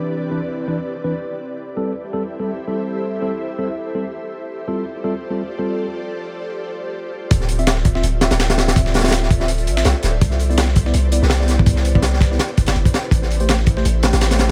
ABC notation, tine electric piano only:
X:1
M:4/4
L:1/16
Q:"Swing 16ths" 1/4=165
K:Ddor
V:1 name="Tine electric piano"
[E,CDB]3 [E,CDB] z3 [E,CDB] z3 [E,CDB] z4 | z3 [G,CA]2 z2 [G,CA] z2 [G,CA] z2 [G,CA]3- | [G,CA]3 [G,CA] z3 [G,CA] z3 [G,CA] z4 | z3 [G,CFA]2 z2 [G,CFA] z2 [G,CFA] z2 [G,CFA]3 |
z16 | z3 [CFe]2 z2 [CFe] z2 [CFe] z2 [CFe]3- | [CFe]3 [CFe] z3 [CFe] z3 [CFe] z4 | z3 [B,Ed]2 z2 [B,Ed] z2 [B,Ed] z2 [B,Ed]3- |
[B,Ed]3 [B,Ed] z3 [B,Ed] z3 [B,Ed] z4 | z3 [A,Gc]2 z2 [A,Gc] z2 [A,Gc] z2 [A,Gc]3 |]